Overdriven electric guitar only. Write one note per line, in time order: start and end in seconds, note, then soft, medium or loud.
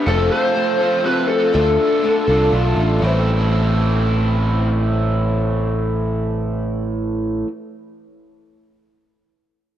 0.06 0.83 F3 medium
0.06 0.82 A3 medium
0.06 0.80 C4 medium
0.06 0.80 F4 medium
0.06 0.79 A4 medium
0.79 1.54 F3 medium
0.79 1.52 A3 medium
0.79 1.53 C4 medium
0.79 1.53 F4 medium
0.79 1.56 A4 medium
1.53 2.26 D3 medium
1.53 2.27 D4 medium
1.53 2.27 F4 medium
1.53 2.26 A4 medium
2.27 3.01 D4 medium
2.27 3.01 F4 medium
2.27 3.00 A4 medium
2.31 3.02 D3 medium
3.01 7.47 A2 medium
3.01 7.47 E3 medium
3.01 7.48 A3 medium
3.01 7.48 C4 loud
3.01 7.49 E4 medium